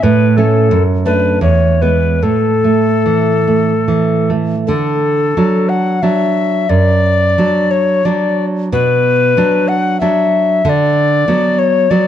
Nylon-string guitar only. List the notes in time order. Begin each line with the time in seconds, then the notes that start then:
0.03 A2
0.37 A3 C#4
0.71 F#2
1.06 A3 D4
1.41 E2
1.82 G#3 B3
2.23 A2
2.64 A3
3.06 E3
3.47 A3
3.88 E3
4.30 A3
4.68 D3
5.37 F#3 D4
6.03 F#3 D4
6.69 F#2
7.38 F#3 D4
8.05 F#3 D4
8.72 B2
9.37 F#3 D4
10.02 F#3 D4
10.65 D3
11.28 F#3 B3
11.91 F#3 B3